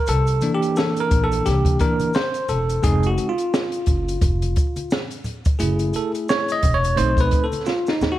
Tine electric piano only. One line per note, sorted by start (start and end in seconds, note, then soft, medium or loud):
0.09 0.51 A4 loud
0.42 1.79 E3 medium
0.42 1.79 A#3 soft
0.42 1.79 D4 medium
0.55 0.78 G4 medium
0.77 1.01 A4 medium
1.00 1.24 A#4 medium
1.24 1.47 A4 loud
1.46 1.81 G4 medium
1.80 2.11 E3 soft
1.80 2.12 A#3 soft
1.80 2.12 D4 medium
1.80 2.16 A#4 medium
2.15 2.51 C5 medium
2.49 2.85 A4 medium
2.82 3.31 G#3 medium
2.82 3.32 C4 soft
2.82 3.32 D#4 medium
2.82 3.08 G#4 loud
3.07 3.28 F#4 medium
3.29 4.98 F4 medium
5.59 6.59 A3 medium
5.59 6.59 E4 medium
5.59 6.59 G#4 medium
5.96 6.11 A4 medium
6.29 6.53 C#5 loud
6.52 6.76 D#5 medium
6.74 6.98 C#5 loud
6.96 7.45 A3 medium
6.96 7.45 C4 soft
6.96 7.46 D#4 medium
6.96 7.19 C5 loud
7.21 7.44 B4 medium
7.44 7.67 A4 medium
7.67 7.90 F4 medium
7.89 8.13 D#4 medium
8.12 8.19 F#4 medium